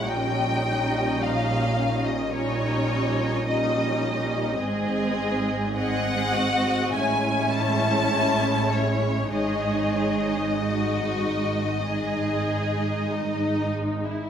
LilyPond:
<<
  \new Staff \with { instrumentName = "Violin section" } { \time 4/4 \key gis \phrygian \tempo 4 = 51 g''4 eis''8. dis''16 cis''4 dis''4 | r4 fis''4 gis''8 a''4 cis''8 | dis''2.~ dis''8 r8 | }
  \new Staff \with { instrumentName = "Violin section" } { \time 4/4 \key gis \phrygian << { dis''2 dis''4 dis''4 | dis''4 dis''4 cis''2 | cis''4 fis'4 gis'4 dis'8. e'16 | } \\ { dis'2 dis'4 dis'4 | gis'4 gis'8 fis'8 e'2 | gis'4 r2. | } >> }
  \new Staff \with { instrumentName = "Viola section" } { \time 4/4 \key gis \phrygian <g cis'>2 <g cis'>4 <g cis'>4 | <gis bis>4 <gis bis>4 <gis cis'>2 | <gis dis'>2 <gis dis'>2 | }
  \new Staff \with { instrumentName = "Cello section" } { \clef bass \time 4/4 \key gis \phrygian ais,1 | gis,2 a,2 | gis,1 | }
  \new Staff \with { instrumentName = "Double bass section" } { \clef bass \time 4/4 \key gis \phrygian ais,,1 | gis,,2 a,,2 | gis,,1 | }
>>